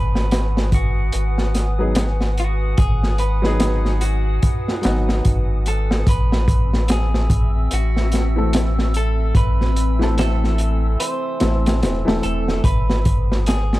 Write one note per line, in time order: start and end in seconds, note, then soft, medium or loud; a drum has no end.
0.00 1.11 G#1 medium
0.00 0.69 B4 loud
0.00 6.02 B4 medium
0.00 6.02 F#5 medium
0.00 6.03 G#5 medium
0.00 6.02 D#6 medium
0.15 snare medium
0.31 snare loud
0.31 closed hi-hat medium
0.57 snare medium
0.72 1.52 F#4 medium
0.72 kick medium
0.72 closed hi-hat medium
1.12 2.75 G#1 medium
1.12 closed hi-hat medium
1.38 snare soft
1.54 snare soft
1.54 closed hi-hat medium
1.79 2.00 F#3 medium
1.79 2.01 B3 medium
1.79 2.01 D#4 medium
1.79 2.01 G#4 medium
1.95 snare loud
1.95 closed hi-hat medium
2.21 snare soft
2.37 2.77 F#4 medium
2.37 closed hi-hat medium
2.78 4.39 G#1 loud
2.78 3.19 G#4 loud
2.78 kick loud
2.78 closed hi-hat medium
3.03 snare soft
3.18 4.04 B4 loud
3.18 closed hi-hat medium
3.42 4.79 F#3 loud
3.42 4.79 B3 medium
3.42 4.80 D#4 medium
3.42 snare soft
3.46 4.81 G#4 loud
3.60 snare loud
3.60 closed hi-hat medium
3.85 snare soft
4.01 4.80 F#4 medium
4.01 closed hi-hat medium
4.43 kick medium
4.43 closed hi-hat medium
4.68 snare soft
4.82 5.21 G#1 loud
4.82 6.04 F#3 medium
4.82 6.05 B3 medium
4.82 6.05 D#4 medium
4.82 snare loud
4.82 closed hi-hat medium
4.86 6.06 F#4 loud
5.09 snare medium
5.25 6.04 G#1 medium
5.25 kick medium
5.25 closed hi-hat medium
5.66 6.09 A4 medium
5.66 closed hi-hat medium
5.91 snare medium
6.06 7.68 A1 loud
6.06 12.60 C4 medium
6.06 6.91 B4 loud
6.06 12.60 E5 medium
6.06 12.60 E6 medium
6.06 kick loud
6.06 closed hi-hat medium
6.32 snare medium
6.48 kick loud
6.48 closed hi-hat medium
6.73 snare medium
6.88 7.75 G#4 medium
6.88 snare loud
6.88 closed hi-hat medium
7.14 snare medium
7.30 kick loud
7.30 closed hi-hat medium
7.71 9.33 A1 medium
7.71 8.92 F#4 medium
7.71 closed hi-hat medium
7.97 snare soft
8.12 snare soft
8.12 closed hi-hat medium
8.36 8.58 E3 medium
8.36 8.58 A3 medium
8.36 8.58 C4 medium
8.36 8.59 A4 medium
8.53 snare loud
8.53 closed hi-hat medium
8.79 snare soft
8.94 9.34 A4 loud
8.94 closed hi-hat medium
9.35 10.96 A1 loud
9.35 10.14 B4 loud
9.35 13.80 G#5 medium
9.35 kick loud
9.35 closed hi-hat medium
9.61 snare soft
9.76 closed hi-hat medium
9.99 11.36 E3 medium
9.99 11.37 A3 medium
9.99 11.37 C4 medium
9.99 snare soft
10.03 11.38 A4 loud
10.18 11.00 A4 loud
10.18 snare loud
10.18 closed hi-hat medium
10.44 snare soft
10.58 closed hi-hat medium
11.00 12.23 C5 loud
11.00 closed hi-hat loud
11.40 11.85 A1 medium
11.40 12.00 E3 medium
11.40 12.01 A3 medium
11.40 12.01 C4 medium
11.40 12.01 A4 medium
11.40 snare loud
11.40 closed hi-hat medium
11.66 snare loud
11.66 closed hi-hat medium
11.83 12.04 E1 medium
11.83 snare loud
11.83 closed hi-hat medium
12.05 12.21 E1 medium
12.05 12.61 E3 medium
12.05 12.62 A3 medium
12.05 12.62 C4 medium
12.05 12.63 A4 loud
12.05 snare loud
12.23 12.61 E1 loud
12.23 12.62 A4 loud
12.23 closed hi-hat medium
12.48 snare soft
12.64 13.80 G#1 loud
12.64 13.80 B4 medium
12.64 13.47 B4 loud
12.64 13.80 F#5 medium
12.64 13.80 D#6 medium
12.64 kick loud
12.64 closed hi-hat medium
12.90 snare medium
13.05 kick medium
13.05 closed hi-hat medium
13.32 snare medium
13.46 13.80 G#4 loud
13.46 snare loud
13.46 closed hi-hat medium
13.73 snare medium